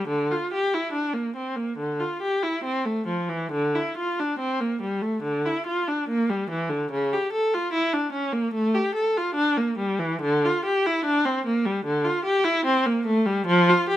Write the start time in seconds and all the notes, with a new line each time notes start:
0.07 D3
0.31 F4
0.53 G4
0.74 E4
0.92 D4
1.13 A#3
1.36 C4
1.56 A#3
1.77 D3
1.99 F4
2.21 G4
2.42 E4
2.64 C4
2.85 A3
3.07 F3
3.29 E3
3.51 D3
3.74 E4
3.97 F4
4.19 D4
4.39 C4
4.60 A#3
4.81 G3
5.01 A3
5.22 D3
5.45 E4
5.66 F4
5.88 D4
6.08 A#3
6.30 G3
6.50 E3
6.69 D3
6.91 C#3
7.13 G4
7.32 A4
7.53 F4
7.72 E4
7.93 D4
8.12 C#4
8.32 A#3
8.53 A3
8.74 G4
8.95 A4
9.17 F4
9.34 D4
9.57 A#3
9.78 G3
9.99 E3
10.21 D3
10.45 F4
10.65 G4
10.86 E4
11.04 D4
11.25 C4
11.45 A#3
11.65 G3
11.85 D3
12.04 F4
12.24 G4
12.44 E4
12.65 C4
12.86 A#3
13.05 A3
13.26 G3
13.46 F3
13.69 F4
13.89 G4